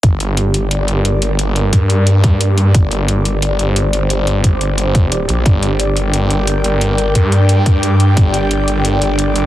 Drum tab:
HH |xxxxxxxx|xxxxxxxx|xxxxxxxx|xxxxxxxx|
BD |o-------|--o--o--|o-------|--o--o--|

HH |xxxxxxxx|xxxxxxxx|xxxxxxxx|
BD |o-------|--o--o--|o-------|